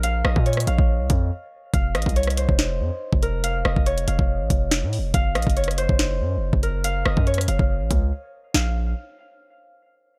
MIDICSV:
0, 0, Header, 1, 4, 480
1, 0, Start_track
1, 0, Key_signature, -5, "minor"
1, 0, Tempo, 425532
1, 38, Time_signature, 4, 2, 24, 8
1, 11491, End_track
2, 0, Start_track
2, 0, Title_t, "Harp"
2, 0, Program_c, 0, 46
2, 0, Note_on_c, 0, 70, 83
2, 0, Note_on_c, 0, 72, 81
2, 0, Note_on_c, 0, 75, 82
2, 39, Note_on_c, 0, 77, 105
2, 274, Note_off_c, 0, 75, 0
2, 278, Note_on_c, 0, 75, 82
2, 520, Note_on_c, 0, 73, 79
2, 587, Note_off_c, 0, 72, 0
2, 754, Note_off_c, 0, 77, 0
2, 759, Note_on_c, 0, 77, 86
2, 1953, Note_off_c, 0, 77, 0
2, 1958, Note_on_c, 0, 77, 93
2, 2191, Note_off_c, 0, 70, 0
2, 2193, Note_off_c, 0, 75, 0
2, 2198, Note_on_c, 0, 75, 83
2, 2434, Note_off_c, 0, 73, 0
2, 2438, Note_on_c, 0, 73, 77
2, 2678, Note_on_c, 0, 72, 79
2, 2746, Note_off_c, 0, 73, 0
2, 3638, Note_on_c, 0, 70, 84
2, 3835, Note_off_c, 0, 77, 0
2, 3877, Note_on_c, 0, 77, 103
2, 4114, Note_off_c, 0, 75, 0
2, 4118, Note_on_c, 0, 75, 79
2, 4358, Note_on_c, 0, 73, 80
2, 4426, Note_off_c, 0, 72, 0
2, 4593, Note_off_c, 0, 77, 0
2, 4598, Note_on_c, 0, 77, 82
2, 5794, Note_off_c, 0, 77, 0
2, 5799, Note_on_c, 0, 77, 101
2, 6031, Note_off_c, 0, 70, 0
2, 6035, Note_off_c, 0, 75, 0
2, 6040, Note_on_c, 0, 75, 82
2, 6274, Note_off_c, 0, 73, 0
2, 6279, Note_on_c, 0, 73, 77
2, 6519, Note_on_c, 0, 72, 90
2, 6587, Note_off_c, 0, 73, 0
2, 7478, Note_on_c, 0, 70, 84
2, 7676, Note_off_c, 0, 77, 0
2, 7718, Note_on_c, 0, 77, 101
2, 7920, Note_off_c, 0, 77, 0
2, 7954, Note_off_c, 0, 75, 0
2, 7959, Note_on_c, 0, 75, 83
2, 8160, Note_off_c, 0, 75, 0
2, 8199, Note_on_c, 0, 73, 76
2, 8267, Note_off_c, 0, 72, 0
2, 8400, Note_off_c, 0, 73, 0
2, 8439, Note_on_c, 0, 77, 84
2, 9594, Note_off_c, 0, 77, 0
2, 9638, Note_on_c, 0, 77, 85
2, 9862, Note_off_c, 0, 77, 0
2, 9871, Note_off_c, 0, 70, 0
2, 11491, End_track
3, 0, Start_track
3, 0, Title_t, "808-style bass"
3, 0, Program_c, 1, 38
3, 0, Note_on_c, 1, 34, 103
3, 255, Note_off_c, 1, 34, 0
3, 277, Note_on_c, 1, 34, 104
3, 400, Note_off_c, 1, 34, 0
3, 407, Note_on_c, 1, 46, 105
3, 745, Note_off_c, 1, 46, 0
3, 758, Note_on_c, 1, 34, 105
3, 881, Note_off_c, 1, 34, 0
3, 886, Note_on_c, 1, 34, 112
3, 1126, Note_on_c, 1, 36, 98
3, 1142, Note_off_c, 1, 34, 0
3, 1233, Note_off_c, 1, 36, 0
3, 1239, Note_on_c, 1, 41, 112
3, 1479, Note_off_c, 1, 41, 0
3, 1958, Note_on_c, 1, 29, 110
3, 2198, Note_on_c, 1, 33, 100
3, 2215, Note_off_c, 1, 29, 0
3, 2319, Note_off_c, 1, 33, 0
3, 2327, Note_on_c, 1, 36, 106
3, 2787, Note_off_c, 1, 36, 0
3, 2806, Note_on_c, 1, 29, 113
3, 3158, Note_on_c, 1, 41, 108
3, 3175, Note_off_c, 1, 29, 0
3, 3279, Note_off_c, 1, 41, 0
3, 3526, Note_on_c, 1, 29, 106
3, 4095, Note_off_c, 1, 29, 0
3, 4118, Note_on_c, 1, 29, 105
3, 4240, Note_off_c, 1, 29, 0
3, 4247, Note_on_c, 1, 29, 103
3, 4585, Note_off_c, 1, 29, 0
3, 4599, Note_on_c, 1, 29, 108
3, 4721, Note_off_c, 1, 29, 0
3, 4726, Note_on_c, 1, 29, 111
3, 4966, Note_on_c, 1, 33, 99
3, 4983, Note_off_c, 1, 29, 0
3, 5073, Note_off_c, 1, 33, 0
3, 5079, Note_on_c, 1, 29, 112
3, 5446, Note_on_c, 1, 45, 102
3, 5462, Note_off_c, 1, 29, 0
3, 5622, Note_on_c, 1, 29, 106
3, 5639, Note_off_c, 1, 45, 0
3, 5790, Note_off_c, 1, 29, 0
3, 5799, Note_on_c, 1, 30, 106
3, 6038, Note_on_c, 1, 34, 102
3, 6055, Note_off_c, 1, 30, 0
3, 6159, Note_off_c, 1, 34, 0
3, 6167, Note_on_c, 1, 30, 99
3, 6627, Note_off_c, 1, 30, 0
3, 6646, Note_on_c, 1, 30, 107
3, 6999, Note_on_c, 1, 42, 103
3, 7015, Note_off_c, 1, 30, 0
3, 7183, Note_on_c, 1, 30, 102
3, 7200, Note_off_c, 1, 42, 0
3, 7357, Note_off_c, 1, 30, 0
3, 7366, Note_on_c, 1, 30, 101
3, 7935, Note_off_c, 1, 30, 0
3, 7959, Note_on_c, 1, 30, 106
3, 8081, Note_off_c, 1, 30, 0
3, 8087, Note_on_c, 1, 42, 103
3, 8425, Note_off_c, 1, 42, 0
3, 8438, Note_on_c, 1, 30, 109
3, 8560, Note_off_c, 1, 30, 0
3, 8566, Note_on_c, 1, 30, 109
3, 8805, Note_on_c, 1, 33, 100
3, 8822, Note_off_c, 1, 30, 0
3, 8913, Note_off_c, 1, 33, 0
3, 8919, Note_on_c, 1, 37, 114
3, 9159, Note_off_c, 1, 37, 0
3, 9637, Note_on_c, 1, 34, 107
3, 10084, Note_off_c, 1, 34, 0
3, 11491, End_track
4, 0, Start_track
4, 0, Title_t, "Drums"
4, 39, Note_on_c, 9, 42, 109
4, 152, Note_off_c, 9, 42, 0
4, 278, Note_on_c, 9, 37, 115
4, 391, Note_off_c, 9, 37, 0
4, 407, Note_on_c, 9, 36, 98
4, 519, Note_on_c, 9, 42, 51
4, 520, Note_off_c, 9, 36, 0
4, 599, Note_off_c, 9, 42, 0
4, 599, Note_on_c, 9, 42, 66
4, 646, Note_on_c, 9, 37, 74
4, 679, Note_off_c, 9, 42, 0
4, 679, Note_on_c, 9, 42, 80
4, 759, Note_off_c, 9, 37, 0
4, 759, Note_off_c, 9, 42, 0
4, 759, Note_on_c, 9, 42, 84
4, 872, Note_off_c, 9, 42, 0
4, 886, Note_on_c, 9, 36, 103
4, 999, Note_off_c, 9, 36, 0
4, 1239, Note_on_c, 9, 36, 93
4, 1239, Note_on_c, 9, 42, 93
4, 1351, Note_off_c, 9, 42, 0
4, 1352, Note_off_c, 9, 36, 0
4, 1958, Note_on_c, 9, 36, 124
4, 1959, Note_on_c, 9, 42, 108
4, 2071, Note_off_c, 9, 36, 0
4, 2071, Note_off_c, 9, 42, 0
4, 2198, Note_on_c, 9, 37, 110
4, 2198, Note_on_c, 9, 42, 66
4, 2278, Note_off_c, 9, 42, 0
4, 2278, Note_on_c, 9, 42, 65
4, 2311, Note_off_c, 9, 37, 0
4, 2327, Note_on_c, 9, 36, 99
4, 2359, Note_off_c, 9, 42, 0
4, 2359, Note_on_c, 9, 42, 62
4, 2438, Note_off_c, 9, 42, 0
4, 2438, Note_on_c, 9, 42, 61
4, 2440, Note_off_c, 9, 36, 0
4, 2518, Note_off_c, 9, 42, 0
4, 2518, Note_on_c, 9, 42, 64
4, 2565, Note_on_c, 9, 37, 72
4, 2598, Note_off_c, 9, 42, 0
4, 2598, Note_on_c, 9, 42, 59
4, 2678, Note_off_c, 9, 37, 0
4, 2678, Note_off_c, 9, 42, 0
4, 2678, Note_on_c, 9, 42, 85
4, 2791, Note_off_c, 9, 42, 0
4, 2806, Note_on_c, 9, 36, 104
4, 2918, Note_off_c, 9, 36, 0
4, 2918, Note_on_c, 9, 42, 82
4, 2919, Note_on_c, 9, 38, 112
4, 3031, Note_off_c, 9, 42, 0
4, 3032, Note_off_c, 9, 38, 0
4, 3526, Note_on_c, 9, 36, 92
4, 3638, Note_off_c, 9, 36, 0
4, 3639, Note_on_c, 9, 42, 65
4, 3751, Note_off_c, 9, 42, 0
4, 3878, Note_on_c, 9, 42, 105
4, 3991, Note_off_c, 9, 42, 0
4, 4118, Note_on_c, 9, 37, 110
4, 4231, Note_off_c, 9, 37, 0
4, 4247, Note_on_c, 9, 36, 96
4, 4359, Note_on_c, 9, 42, 68
4, 4360, Note_off_c, 9, 36, 0
4, 4472, Note_off_c, 9, 42, 0
4, 4486, Note_on_c, 9, 42, 64
4, 4599, Note_off_c, 9, 42, 0
4, 4599, Note_on_c, 9, 42, 82
4, 4711, Note_off_c, 9, 42, 0
4, 4726, Note_on_c, 9, 36, 99
4, 4839, Note_off_c, 9, 36, 0
4, 5079, Note_on_c, 9, 36, 97
4, 5079, Note_on_c, 9, 42, 89
4, 5191, Note_off_c, 9, 42, 0
4, 5192, Note_off_c, 9, 36, 0
4, 5318, Note_on_c, 9, 38, 121
4, 5319, Note_on_c, 9, 42, 76
4, 5431, Note_off_c, 9, 38, 0
4, 5431, Note_off_c, 9, 42, 0
4, 5559, Note_on_c, 9, 46, 46
4, 5671, Note_off_c, 9, 46, 0
4, 5799, Note_on_c, 9, 36, 120
4, 5799, Note_on_c, 9, 42, 111
4, 5911, Note_off_c, 9, 42, 0
4, 5912, Note_off_c, 9, 36, 0
4, 6038, Note_on_c, 9, 37, 109
4, 6039, Note_on_c, 9, 42, 63
4, 6119, Note_off_c, 9, 42, 0
4, 6119, Note_on_c, 9, 42, 64
4, 6151, Note_off_c, 9, 37, 0
4, 6167, Note_on_c, 9, 36, 96
4, 6199, Note_off_c, 9, 42, 0
4, 6199, Note_on_c, 9, 42, 62
4, 6279, Note_off_c, 9, 42, 0
4, 6279, Note_on_c, 9, 42, 64
4, 6280, Note_off_c, 9, 36, 0
4, 6359, Note_off_c, 9, 42, 0
4, 6359, Note_on_c, 9, 42, 61
4, 6406, Note_on_c, 9, 37, 73
4, 6439, Note_off_c, 9, 42, 0
4, 6439, Note_on_c, 9, 42, 60
4, 6519, Note_off_c, 9, 37, 0
4, 6519, Note_off_c, 9, 42, 0
4, 6519, Note_on_c, 9, 42, 85
4, 6632, Note_off_c, 9, 42, 0
4, 6646, Note_on_c, 9, 36, 102
4, 6759, Note_off_c, 9, 36, 0
4, 6759, Note_on_c, 9, 38, 114
4, 6759, Note_on_c, 9, 42, 80
4, 6871, Note_off_c, 9, 42, 0
4, 6872, Note_off_c, 9, 38, 0
4, 7366, Note_on_c, 9, 36, 91
4, 7479, Note_off_c, 9, 36, 0
4, 7479, Note_on_c, 9, 42, 68
4, 7591, Note_off_c, 9, 42, 0
4, 7718, Note_on_c, 9, 42, 107
4, 7831, Note_off_c, 9, 42, 0
4, 7958, Note_on_c, 9, 37, 112
4, 8071, Note_off_c, 9, 37, 0
4, 8087, Note_on_c, 9, 36, 97
4, 8199, Note_on_c, 9, 42, 49
4, 8200, Note_off_c, 9, 36, 0
4, 8279, Note_off_c, 9, 42, 0
4, 8279, Note_on_c, 9, 42, 68
4, 8326, Note_on_c, 9, 37, 71
4, 8359, Note_off_c, 9, 42, 0
4, 8359, Note_on_c, 9, 42, 78
4, 8438, Note_off_c, 9, 37, 0
4, 8439, Note_off_c, 9, 42, 0
4, 8439, Note_on_c, 9, 42, 85
4, 8551, Note_off_c, 9, 42, 0
4, 8566, Note_on_c, 9, 36, 100
4, 8679, Note_off_c, 9, 36, 0
4, 8919, Note_on_c, 9, 36, 95
4, 8919, Note_on_c, 9, 42, 90
4, 9031, Note_off_c, 9, 42, 0
4, 9032, Note_off_c, 9, 36, 0
4, 9639, Note_on_c, 9, 38, 109
4, 9751, Note_off_c, 9, 38, 0
4, 11491, End_track
0, 0, End_of_file